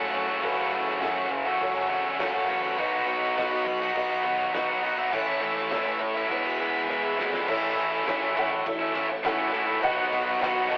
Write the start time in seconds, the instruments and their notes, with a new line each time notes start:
Already playing: fingered electric bass F#1, distorted electric guitar F#2 C#3 F#3 A3 C#4 F#4, tonewheel organ F#3 A3 C#4, honky-tonk piano F#4 A4 C#5
0.00 distorted electric guitar F#3 A3 C#4
0.12 fingered electric bass F#1, distorted electric guitar F#3 A3 C#4 F#4
0.27 distorted electric guitar F#3 A3 C#4 F#4
0.41 fingered electric bass F#1, distorted electric guitar F#2 C#3 F#3 A3 C#4 F#4, tonewheel organ F#3 A3 C#4, honky-tonk piano F#4 A4 B4, kick, open hi-hat
0.56 distorted electric guitar F#3 A3 C#4 F#4
0.71 fingered electric bass F#1, distorted electric guitar F#3 A3 C#4 F#4
0.88 snare
1.00 fingered electric bass F#1, distorted electric guitar F#2 C#3 F#3 A3 C#4 F#4, honky-tonk piano F#4 A4 E5, snare, open hi-hat
1.15 distorted electric guitar F#3 A3 C#4 F#4
1.30 muted distorted electric guitar stroke, muted overdriven electric guitar stroke, kick
1.45 distorted electric guitar F#3 A3 C#4 F#4
1.61 fingered electric bass C#2, honky-tonk piano F#4 A4 C#5, kick, open hi-hat
1.74 overdriven electric guitar F#3 A3 C#4 F#4
1.88 fingered electric bass E1, distorted electric guitar F#3 A3 C#4 F#4
2.18 distorted electric guitar F#2 C#3 F#3 A3 C#4 F#4, fingered electric bass F#2, tonewheel organ F#4, honky-tonk piano F#4 A4 C#5, snare, open hi-hat
2.32 distorted electric guitar F#3 A3 C#4 F#4, tonewheel organ A4
2.45 distorted electric guitar F#3 A3 C#4, tonewheel organ A#4
2.49 fingered electric bass A1, distorted electric guitar F#4, tonewheel organ B4
2.62 distorted electric guitar F#3 A3 C#4 F#4
2.77 fingered electric bass B1, distorted electric guitar B2 F#3 B3 D#4 F#4, honky-tonk piano F#4 B4 D#5, kick, open hi-hat
2.91 distorted electric guitar B3 D#4 F#4
3.06 distorted electric guitar F#3 B3 D#4 F#4, tonewheel organ F#3 B3 D#4
3.23 snare
3.36 fingered electric bass B1, distorted electric guitar B2 F#3 B3 D#4 F#4, honky-tonk piano F#4 B4 D#5, tonewheel organ A4, snare, open hi-hat
3.50 distorted electric guitar B3 D#4 F#4, tonewheel organ F#4
3.65 fingered electric bass B1, tonewheel organ F#4, muted overdriven electric guitar stroke, muted distorted electric guitar stroke, kick
3.80 distorted electric guitar B3 D#4 F#4
3.95 fingered electric bass B1, honky-tonk piano F#4 B4 D#5, tonewheel organ F#4, kick, open hi-hat
4.09 overdriven electric guitar B3 D#4 F#4
4.23 fingered electric bass D#2, tonewheel organ F#3 B3 D#4, distorted electric guitar F#3 B3 D#4 F#4
4.53 fingered electric bass B1, distorted electric guitar B2 F#3 B3 D#4 F#4, honky-tonk piano F#4 B4 D#5, snare, open hi-hat
4.68 distorted electric guitar B3 D#4 F#4
4.83 fingered electric bass B1, distorted electric guitar F#3 B3 D#4 F#4, tonewheel organ F#5
4.97 distorted electric guitar B3 D#4 F#4, tonewheel organ E5
5.11 fingered electric bass A1, distorted electric guitar A2 E3 A3 C#4 E4, tonewheel organ A3 C#4 E4 F#5, honky-tonk piano E4 A4 C#5, kick, open hi-hat
5.26 distorted electric guitar A3 C#4 E4, tonewheel organ C#5
5.41 fingered electric bass A1, distorted electric guitar E3 A3 C#4 E4, tonewheel organ E5
5.57 tonewheel organ C#5, snare
5.70 fingered electric bass A1, distorted electric guitar A2 E3 A3 C#4 E4, honky-tonk piano E4 A4 C#5, tonewheel organ E5, snare, open hi-hat
5.85 distorted electric guitar A3 C#4 E4, tonewheel organ B4
6.00 tonewheel organ C#5, muted overdriven electric guitar stroke, muted distorted electric guitar stroke, kick
6.15 distorted electric guitar A3 C#4 E4, tonewheel organ B4
6.29 distorted electric guitar E2 B2 E3 G#3 B3 E4, tonewheel organ G#3 B3 E4 C#5, honky-tonk piano E4 G#4 B4
6.43 overdriven electric guitar E3 G#3 B3 E4, tonewheel organ F#4
6.59 distorted electric guitar E3 G#3 B3 E4, tonewheel organ B4
6.88 distorted electric guitar E2 B2 E3 G#3 B3 E4, honky-tonk piano E4 G#4 B4, tonewheel organ E4 G#4, snare
7.03 distorted electric guitar E3 G#3 B3 E4
7.17 distorted electric guitar E3 G#3 B3 E4, tonewheel organ A3, snare
7.21 tonewheel organ B3 C4
7.27 tonewheel organ D4 E4
7.31 distorted electric guitar E3 G#3 B3 E4, tonewheel organ F4 G4, snare
7.38 tonewheel organ A4 B4
7.43 distorted electric guitar A2 E3, tonewheel organ C5 D5
7.47 fingered electric bass A1, distorted electric guitar A3 C#4 E4, tonewheel organ A3 E4 C#5, honky-tonk piano E4 A4 C#5 E5, kick, crash
7.61 distorted electric guitar A3 C#4 E4
7.77 fingered electric bass A1, ride
7.91 overdriven electric guitar A3 C#4 E4
8.05 fingered electric bass A1, distorted electric guitar A2 E3 A3 C#4 E4, honky-tonk piano E4 A4 C#5 E5, snare, ride
8.20 overdriven electric guitar A3 C#4 E4
8.35 fingered electric bass A1, distorted electric guitar E3 A3 C#4 E4, honky-tonk piano E4 A4 C#5 F#5, ride
8.50 muted distorted electric guitar stroke, muted overdriven electric guitar stroke
8.66 fingered electric bass A1, honky-tonk piano E4 A4 C#5 E5, kick, ride
8.79 distorted electric guitar A3 C#4 E4
8.94 fingered electric bass A1, distorted electric guitar E3 A3 C#4 E4, kick, snare, ride
9.09 muted overdriven electric guitar stroke, muted distorted electric guitar stroke
9.23 distorted electric guitar A2 E3 A3 C#4 E4, fingered electric bass A2, honky-tonk piano E4 A4 C#5 F#5, snare, ride
9.52 fingered electric bass A2, distorted electric guitar A2 E3 A3 C#4 E4, ride
9.67 distorted electric guitar A3 C#4 E4
9.81 fingered electric bass B1, distorted electric guitar B2 D#3 F#3 B3 D#4 F#4, tonewheel organ B3 F#4 D#5, honky-tonk piano F#4 B4 D#5 F#5, kick, ride
9.96 distorted electric guitar B3 D#4 F#4
10.13 fingered electric bass B1, ride
10.26 overdriven electric guitar B3 D#4 F#4
10.39 fingered electric bass B1, distorted electric guitar B2 F#3 B3 D#4 F#4, honky-tonk piano F#4 B4 D#5 F#5, snare, ride
10.55 overdriven electric guitar B3 D#4 F#4
10.68 fingered electric bass B1, distorted electric guitar F#3 B3 D#4 F#4, honky-tonk piano F#4 B4 D#5 A5, ride